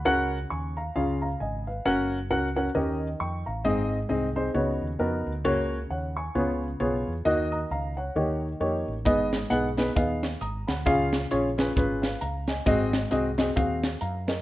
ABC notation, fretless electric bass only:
X:1
M:4/4
L:1/8
Q:"Swing" 1/4=133
K:C#mix
V:1 name="Fretless electric bass" clef=bass
C,,2 D,,2 C,,2 G,,,2 | F,,,2 C,,2 D,,2 E,, =A,,, | G,,,2 ^B,,,2 C,, D,, E,, =D,, | C,,2 D,,2 C,,2 B,,, =E,, |
D,,2 C,,2 D,,2 E,, =A,,, | G,,,2 B,,,2 D,,2 G,,, =D,, | C,,2 A,,,2 G,,,2 C,,2 | G,,,2 ^B,,,2 D,,2 F,,2 |]